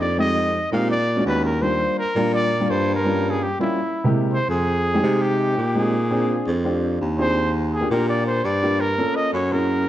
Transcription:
Already playing: baritone saxophone F2
0.01 trumpet D5
0.18 grand piano G#3 C4 D#4 G4, trumpet D#5
0.71 baritone saxophone A#2, grand piano G#3 C4 D#4 G4, trumpet F5
0.91 trumpet D5
1.16 grand piano G#3 C#4 D4 F#4
1.26 baritone saxophone D#2, trumpet B4
1.45 trumpet A#4
1.61 grand piano G3 A#3 D4 F4, trumpet C5
1.99 trumpet A#4
2.15 baritone saxophone A#2, grand piano G3 A#3 D4 F4
2.34 trumpet D5
2.60 grand piano G3 A#3 D4 F4
2.69 baritone saxophone G2, trumpet C5
2.94 trumpet A#4
3.05 grand piano G3 A#3 C#4 F4
3.31 trumpet G#4
3.43 trumpet G4
3.59 grand piano G3 A#3 C#4 F4, trumpet E4
4.04 grand piano C3 G#3 A#3 E4 G4
4.33 trumpet C5
4.49 baritone saxophone F2, trumpet G#4
4.94 grand piano G#3 C4 D#4 G4
5.03 baritone saxophone C3, grand piano G#3 C4 D#4 G4
5.22 trumpet G4
5.57 baritone saxophone A#2
5.75 grand piano G#3 C4 D#4 G4, trumpet G#4
6.11 grand piano C4 D4 F4 G#4
6.47 baritone saxophone F2
6.64 grand piano C4 D4 F4 G4
7.01 baritone saxophone D#2
7.18 grand piano C4 D4 F4 G#4, trumpet C5
7.73 trumpet G#4
7.81 grand piano A#3 D4 F4 G4
7.90 baritone saxophone A#2, grand piano A#3 D4 F4 G4, trumpet A#4
8.09 trumpet D5
8.27 trumpet C5
8.44 baritone saxophone G2, trumpet D5
8.62 grand piano A#3 D4 F4 G4
8.81 trumpet A#4
8.98 grand piano A#3 C#4 F4 A4
9.16 trumpet D#5
9.34 baritone saxophone F#2, trumpet C#5
9.51 grand piano A#3 C#4 E4 G#4, trumpet A#4

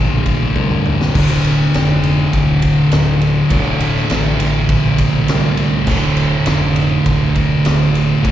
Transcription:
Already playing: fingered electric bass A#1, distorted electric guitar D2 A2 D3
0.26 kick, ride
0.56 fingered electric bass C2, high tom
0.71 mid tom
0.86 mid tom
1.01 snare
1.15 fingered electric bass D1, distorted electric guitar D2 A2 D3, kick, crash
1.45 ride
1.61 snare
1.74 fingered electric bass F1, snare, ride
2.04 ride
2.33 fingered electric bass D1, kick, ride
2.62 kick, ride
2.91 fingered electric bass D1, snare, ride
3.21 ride
3.50 fingered electric bass D1, distorted electric guitar D2 A2 D3, kick, ride
3.80 ride
3.96 snare
4.10 fingered electric bass A1, snare, ride
4.39 fingered electric bass A1, ride
4.69 fingered electric bass A#1, kick, ride
4.98 kick, ride
5.28 fingered electric bass C2, snare, ride
5.44 snare
5.57 ride
5.87 fingered electric bass D1, distorted electric guitar D2 A2 D3, kick, crash
6.17 ride
6.46 fingered electric bass F1, snare, ride
6.76 ride
7.06 fingered electric bass D1, kick, ride
7.36 kick, ride
7.64 fingered electric bass D1, snare, ride
7.81 snare
7.95 ride
8.23 fingered electric bass D1, distorted electric guitar D2 A2 D3, kick, ride

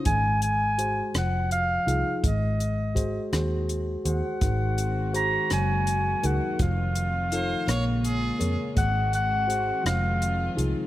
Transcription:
0.05 fingered electric bass G#1, tine electric piano G#3, clarinet G#5, kick, closed hi-hat
0.42 clarinet G#5, closed hi-hat
0.78 tine electric piano F#4 G#4 C5, closed hi-hat
1.14 fingered electric bass F1, tine electric piano F3, clarinet F#5, cross-stick, closed hi-hat
1.51 clarinet F5, closed hi-hat
1.87 fingered electric bass C2, tine electric piano D#4 F4 G#4, closed hi-hat
2.23 fingered electric bass G#1, tine electric piano G#3, clarinet D#5, kick, closed hi-hat
2.60 closed hi-hat
2.95 tine electric piano F#4 G#4 C5, kick, closed hi-hat
3.32 fingered electric bass D#2, tine electric piano F#4 G#4 C5, cross-stick, closed hi-hat
3.69 closed hi-hat
4.05 fingered electric bass D#2, tine electric piano F#4 G#4 C5, clarinet F#5, closed hi-hat
4.39 fingered electric bass G#1, string section D#3 G#3 C4 F#4, tine electric piano D#3, kick, closed hi-hat
4.78 closed hi-hat
5.13 tine electric piano F#4 G#4 C5, clarinet A#5, closed hi-hat
5.49 fingered electric bass F#1, tine electric piano F#3, string section A#3, clarinet G#5, cross-stick, closed hi-hat
5.87 closed hi-hat
6.23 fingered electric bass C#2, tine electric piano D#4 F#4 G#4 A#4, clarinet F#5, closed hi-hat
6.59 fingered electric bass F1, tine electric piano F3, string section A3 C4 F4, clarinet F5, kick, closed hi-hat
6.95 closed hi-hat
7.32 tine electric piano D#4 F4 A4, violin C5, closed hi-hat
7.66 fingered electric bass A#1, string section C#3 G#3 A#3 F4, tine electric piano A#3, violin C#5, cross-stick, closed hi-hat
8.04 violin G#4, closed hi-hat
8.39 fingered electric bass F2, tine electric piano G#4 A#4 C#5, closed hi-hat
8.75 fingered electric bass G#1, string section D#3 C4 F#4, tine electric piano G#3, clarinet F#5, kick, closed hi-hat
9.13 clarinet F#5, closed hi-hat
9.48 tine electric piano F#4 G#4 C5, closed hi-hat
9.83 fingered electric bass F1, tine electric piano F3, string section F4, clarinet F5, cross-stick, closed hi-hat
10.22 closed hi-hat
10.56 fingered electric bass C2, tine electric piano D#4 F4 G#4, closed hi-hat

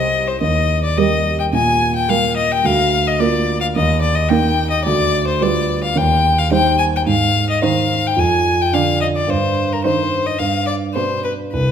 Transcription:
Already playing: grand piano C2 G4 C5, cello G3, violin D#5
0.27 violin C5
0.41 grand piano D#2, violin D#5
0.84 violin D5
0.97 cello G3, grand piano G3 G4 A#4, violin D#5
1.40 violin G5
1.53 grand piano A#2, violin G#5
1.95 violin G5
2.08 cello G3, grand piano G3 G4 A#4, violin F5
2.37 violin D#5
2.52 violin G5
2.64 grand piano D2, violin F5
3.07 violin D#5
3.19 cello A#3, grand piano F4 A#4, violin D5
3.61 violin F5
3.75 grand piano D#2, violin D#5
4.02 violin D5
4.15 violin D#5
4.29 cello A#3, grand piano D#4 A#4, violin G5
4.70 violin D#5
4.85 grand piano D2, violin D5
5.27 violin C5
5.41 cello G3, grand piano F4 B4, violin D5
5.84 violin F5
5.95 grand piano D#2, violin G5
6.38 violin F5
6.51 cello G3, grand piano D#4 C5, violin G5
6.78 violin G#5
6.96 violin G5
7.06 grand piano G#2, violin F5
7.50 violin D#5
7.62 cello D#3, grand piano D#4 C5, violin F5
8.07 violin G5
8.16 grand piano F2, violin G#5
8.61 violin G5
8.72 cello D3, grand piano D4 D5, violin F5
9.01 violin D#5
9.16 violin D5
9.27 grand piano G2, violin C5
9.72 violin A#4
9.84 cello D#3, grand piano D#4 C5, violin C5
10.26 violin D#5
10.38 grand piano G2, violin F5
10.67 violin D5
10.94 cello B2, grand piano D4 B4, violin C5
11.24 violin B4
11.53 grand piano C2, violin B4

